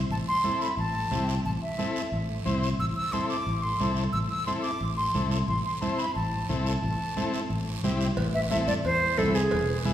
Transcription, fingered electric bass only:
0.10 A1
0.77 A1
1.11 C2
1.45 A1
2.12 A1
2.46 C2
2.79 A1
3.46 A1
3.80 C2
4.14 A1
4.81 A1
5.14 C2
5.48 A1
6.16 A1
6.49 C2
6.83 A1
7.50 A1
7.83 C2
8.17 A1
8.84 E2
9.18 C2
9.52 E1

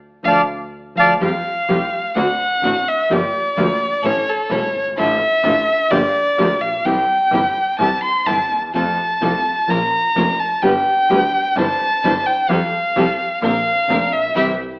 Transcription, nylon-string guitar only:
0.23 F3 A3 D4
0.95 F3 A3 D4
1.20 F3 G3 C4 G4
1.68 F3 G3 C4 G4
2.15 D3 A3 C4 F#4
2.62 D3 A3 C4 F#4
3.10 D3 F3 A#3 D4 G4
3.56 D3 F3 A#3 D4 G4
4.04 E3 A3 C#4 E4
4.51 E3 A3 C#4 E4
4.99 D3 A3 D4 F4
5.44 D3 A3 D4 F4
5.91 D3 F3 A#3 D4 G4
6.38 D3 F3 A#3 D4 G4
6.84 C3 E3 G3 C4 E4
7.33 C3 E3 G3 C4 E4
7.80 C3 E3 G3 C4 E4
8.26 C3 E3 G3 C4 E4
8.74 C3 F3 A3 C4 F4
9.21 C3 F3 A3 C4 F4
9.67 F3 A#3 C#4 F4
10.16 F3 A#3 C#4 F4
10.62 D3 G3 B3 D4 G4
11.09 D3 G3 B3 D4 G4
11.57 C3 E3 G3 D4 E4
12.03 C3 E3 G3 D4 E4
12.48 F3 G3 C4 G4
12.96 F3 G3 C4 G4
13.42 D3 A#3 C4 F4
13.88 D3 A#3 C4 F4
14.35 E3 G3 C4

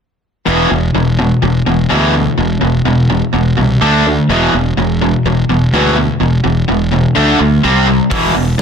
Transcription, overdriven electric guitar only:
0.46 E2 B2 E3
0.70 E2 B2
0.95 E2 B2
1.19 E2 B2
1.42 E2 B2
1.66 E2 B2
1.89 E2 B2 E3
2.14 E2 B2
2.38 E2 B2
2.61 E2 B2
2.85 E2 B2
3.10 E2 B2
3.34 E2 B2
3.58 E2 B2
3.81 D3 A3 D4
4.07 D3 A3
4.29 E2 B2 E3
4.54 E2 B2
4.77 E2 B2
5.01 E2 B2
5.26 E2 B2
5.49 E2 B2
5.74 E2 B2 E3
5.97 E2 B2
6.21 E2 B2
6.44 E2 B2
6.68 E2 B2
6.92 E2 B2
7.15 D3 A3 D4
7.39 D3 A3
7.63 C3 G3 C4
7.87 C3 G3
8.10 E2 B2 E3
8.35 E2 B2
8.58 E2

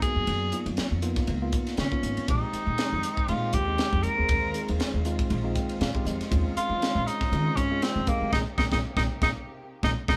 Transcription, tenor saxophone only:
0.02 G#4
1.80 C#4
2.30 D#4
3.29 F4
3.54 G4
4.03 A#4
6.57 F4
7.07 D#4
7.57 C#4
7.83 C4
8.08 A#3
8.33 D#4
8.58 D#4
8.72 D#4
8.97 D#4
9.23 D#4
9.84 D#4
10.09 D#4

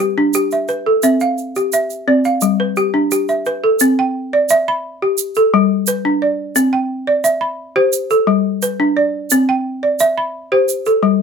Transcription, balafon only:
Already playing: B4
0.00 G4
0.18 D4
0.35 G4
0.53 E5
0.69 B4
0.86 A4
1.03 C4 E5
1.21 F5
1.56 G4
1.73 E5
2.08 C4 D5
2.25 F5
2.42 G3
2.60 B4
2.77 G4
2.94 D4
3.12 G4
3.29 E5
3.47 B4
3.64 A4
3.81 C4
3.99 G5
4.33 D5
4.51 E5
4.68 B5
5.02 G4
5.37 A4
5.54 G3
5.88 B4
6.05 D4
6.22 D5
6.56 C4
6.73 G5
7.07 D5
7.24 E5
7.41 B5
7.76 G4 C5
8.11 A4
8.27 G3
8.63 B4
8.80 D4
8.97 D5
9.32 C4
9.49 G5
9.83 D5
10.00 E5
10.18 B5
10.52 G4 C5
10.87 A4
11.03 G3

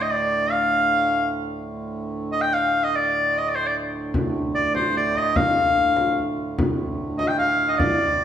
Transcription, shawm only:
0.02 D#5
0.11 D5
0.51 F5
2.32 D#5
2.41 G5
2.53 F5
2.84 D#5
2.95 D5
3.38 D#5
3.48 D5
3.55 C5
3.67 D5
4.55 D5
4.75 C5
4.97 D5
5.18 D#5
5.36 F5
7.18 D#5
7.28 G5
7.38 F5
7.68 D#5 F5
7.75 D5 D#5

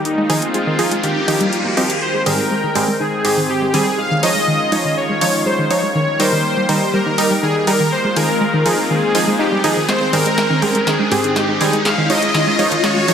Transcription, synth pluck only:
0.18 G#3
0.30 D#3
0.54 G#3
0.67 D#3
0.91 G#3
1.03 D#3
1.28 D#3
1.40 G3
1.65 A#3
1.77 C4
2.14 G#3
2.26 D#3
2.51 G#3
2.64 D#3
2.88 G#3
3.00 D#3
3.25 G#3
3.37 D#3
3.62 G#3
3.74 D#3
3.98 G#3
4.11 D#3
4.36 G#3
4.48 D#3
4.72 G#3
4.85 D#3
5.09 G#3
5.21 D#3
5.46 G#3
5.59 D#3
5.83 G#3
5.95 D#3
6.20 G3
6.32 D#3
6.57 G3
6.69 D#3
6.94 G3
7.06 D#3
7.31 G3
7.43 D#3
7.67 G3
7.80 D#3
8.04 G#3
8.16 D#3
8.41 G#3
8.54 D#3
8.78 G#3
8.90 D#3
9.15 G#4
9.27 G#3
9.39 D#4
9.52 G3
9.64 D#3
9.76 D#3
9.88 G#3
10.01 G#3
10.13 D#3
10.26 G#3
10.38 G#3
10.50 D#3
10.62 G#3
10.75 G#3
10.87 D#3
10.99 G#3
11.11 G#3
11.24 D#3
11.36 G#3
11.49 G#3
11.61 D#3
11.73 G#3
11.85 G#3
11.98 D#3
12.10 G#3
12.22 G#3
12.34 D#3
12.47 G#3
12.59 G#3
12.72 D#3
12.84 G#3
12.96 G#3
13.08 D#3

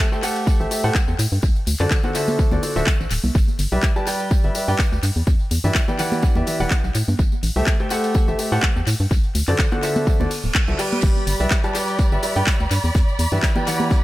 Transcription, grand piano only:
0.12 A3 G4 A4 C5 G5
0.23 A3 G4 A4 C5 F#5
0.60 A3 G4 A4 C5 E5
0.71 A3 G4 A4 C5 E5
0.84 A3 G4 A4 C5 F#5
1.80 D3 F#4 A4 C5 D5
2.04 D3 F#4 A4 C5 F#5
2.15 D3 F#4 A4 C5 E5
2.52 D3 F#4 A4 C5 D5
2.63 D3 F#4 A4 C5 D5
2.76 D3 F#4 A4 C5 E5
3.72 G3 G4 B4 D5 E5
3.96 G3 G4 B4 D5 A5
4.07 G3 G4 B4 D5 G5
4.44 G3 G4 B4 D5 E5
4.55 G3 G4 B4 D5 E5
4.68 G3 G4 B4 D5 G5
5.64 E3 G4 B4 D5 E5
5.88 E3 G4 B4 D5 G5
5.99 E3 G4 B4 D5 F#5
6.36 E3 G4 B4 D5 E5
6.47 E3 G4 B4 D5 E5
6.60 E3 G4 B4 D5 F#5
7.56 A3 G4 A4 C5 E5
7.80 A3 G4 A4 C5 G5
7.91 A3 G4 A4 C5 F#5
8.28 A3 G4 A4 C5 E5
8.39 A3 G4 A4 C5 E5
8.52 A3 G4 A4 C5 F#5
9.48 D3 F#4 A4 C5 D5
9.72 D3 F#4 A4 C5 F#5
9.83 D3 F#4 A4 C5 E5
10.20 D3 F#4 A4 C5 D5
10.68 D3 F#4 A4 C5 E5
10.79 G3 G4 B4 D5 G5
11.40 G3 G4 B4 D5 E5
11.64 G3 G4 B4 D5 A5
11.75 G3 G4 B4 D5 G5
12.12 G3 G4 B4 D5 E5
12.23 G3 G4 B4 D5 E5
12.36 G3 G4 B4 D5 G5
13.32 E3 G4 B4 D5 E5
13.56 E3 G4 B4 D5 G5
13.67 E3 G4 B4 D5 F#5

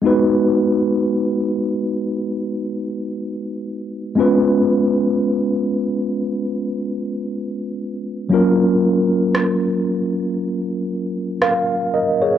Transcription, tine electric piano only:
0.02 G#3 B3 D#4 F#4
0.06 B4
4.15 G#3 B3 C#4 F4
4.20 B4
8.29 F#3 A#3 C#4 F4
8.34 A#4
11.42 A#4 F5
11.94 A#4 D#5
12.22 G#4 C#5

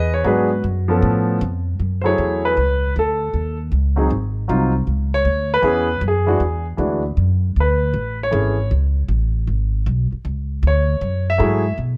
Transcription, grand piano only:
Already playing: G#4 B4 D#5
0.14 C#5
0.24 F#3 B3 D4 F#4 G#4 B4
0.88 F3 B3 C#4 A4
2.01 F#3 A3 E4 C5
2.06 G#4 C#5
2.45 B4
2.99 A4
3.96 F#3 C4 D#4 G#4
4.48 F#3 C4 D#4 F4
5.14 C#5
5.54 B4
5.62 E3 B3 C#4 G#4
6.08 G#4
6.26 E3 G#3 D4 F#4
6.77 E3 G#3 D4 F#4
7.60 B4
8.23 C#5
8.31 E3 A3 C#4 G#4
10.67 C#5
11.30 E5
11.38 F#3 A3 E4 G#4

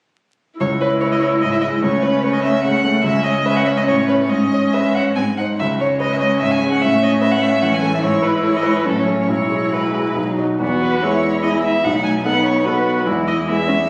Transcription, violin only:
0.60 C#5
0.80 B4
1.01 C#5
1.12 D#5
1.19 C#5
1.41 D#5
1.52 E5
1.61 D#5
1.81 C#5
2.02 B4
2.22 C#5
2.33 D#5
2.43 E5
2.64 F#5
3.03 E5
3.24 D#5
3.46 E5
3.56 F#5
3.65 E5
3.77 D#5
3.87 C#5
4.08 B4
4.20 C#5
4.30 D#5
4.72 E5
4.95 F#5
5.15 G#5
5.37 F#5
5.59 E5
5.80 C#5
6.00 D#5
6.12 E5
6.18 D#5
6.40 E5
6.51 G#5
6.70 F#5
6.81 E5
7.03 D#5
7.21 E5
7.31 F#5
7.41 E5
7.62 F#5
7.73 G#5
7.94 E5
8.01 C#5
8.23 B4
8.43 C#5
8.56 D#5
8.66 C#5
8.76 B4
8.87 A4
8.99 C#5
9.19 C#5
9.31 C#5
9.73 B4
10.80 B4
11.02 C#5
11.43 D#5
11.63 E5
11.84 F#5
12.04 G#5
12.25 F#5
12.44 C#5
12.65 B4
13.27 D#5
13.49 E5

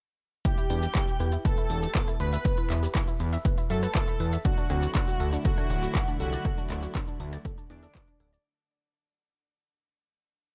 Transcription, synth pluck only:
0.45 E4 E5
0.58 E4 E5
0.70 D4 D5
0.83 G4 G5
0.95 E4 E5
1.08 G4 G5
1.20 B4 B5
1.33 E4 E5
1.45 B4 B5
1.58 E4 E5
1.70 G4 G5
1.83 G4 G5
1.95 B3 B4
2.08 E4 E5
2.20 B4 B5
2.33 E5 E6
2.45 B4 B5
2.58 E4 E5
2.70 E5 E6
2.83 G4 G5
2.95 E4 E5
3.08 E4 E5
3.20 E4 E5
3.33 E5 E6
3.45 B4 B5
3.58 E4 E5
3.70 E5 E6
3.83 B4 B5
3.95 E4 E5
4.08 E4 E5
4.20 B4 B5
4.33 E5 E6
4.45 D4 D5
4.58 D4 D5
4.70 C4 C5
4.83 F#4 F#5
4.95 D4 D5
5.08 F#4 F#5
5.20 A4 A5
5.33 D4 D5
5.45 A4 A5
5.58 D4 D5
5.70 F#4 F#5
5.83 F#4 F#5
5.95 A3
6.08 D4 D5
6.20 A4 A5
6.33 D5 D6
6.45 A4 A5
6.58 D4 D5
6.70 D5 D6
6.83 F#4 F#5
6.95 D4 D5
7.08 D4 D5
7.20 D4 D5
7.33 D5 D6
7.45 A4 A5
7.58 D4 D5
7.70 D5 D6
7.83 A4 A5
7.95 D4
8.08 D4 D5
8.20 A4 A5
8.33 D5 D6

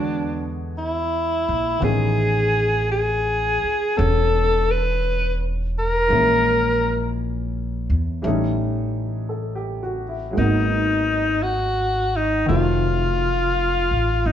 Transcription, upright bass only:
Already playing: E2
1.48 A#1
1.82 A1
3.64 muted upright bass stroke
3.99 E1
6.10 A#1
7.90 E2
8.24 A1
10.37 G#1
12.49 F1
13.91 A1
14.26 G1

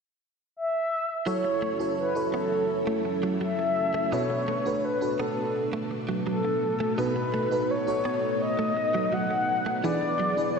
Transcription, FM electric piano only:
1.26 E4 F#4 A4 C#5
1.79 E4 F#4 A4 C#5
2.15 E4 F#4 A4 C#5
4.12 B2 D4 F#4 A4 B4
4.65 D4 F#4 A4 B4
5.01 D4 F#4 A4 B4
6.97 B2 D#4 F#4 A4 B4
7.51 D#4 F#4 A4 B4
7.87 D#4 F#4 A4 C#5
9.83 E3 D4 E4 G#4 B4
10.37 D4 E4 G#4 B4

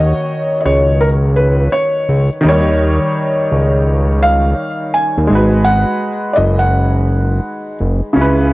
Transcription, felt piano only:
Already playing: D#5
0.60 D#5
0.65 C#5
1.01 A#4
1.36 B4
1.72 C#5
4.23 F5
4.94 G#5
5.64 F#5
6.33 D5 D#5
6.59 F#5

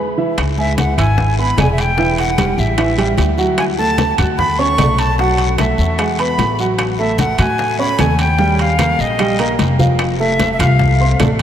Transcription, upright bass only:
0.38 C#2
0.98 G#1
1.58 E1
2.58 A1
3.18 D2
4.19 D2
4.78 B1
5.78 E2
6.38 A1
7.39 A2
7.99 D#2
8.99 A#1
9.59 F1
10.59 C2
11.20 A1

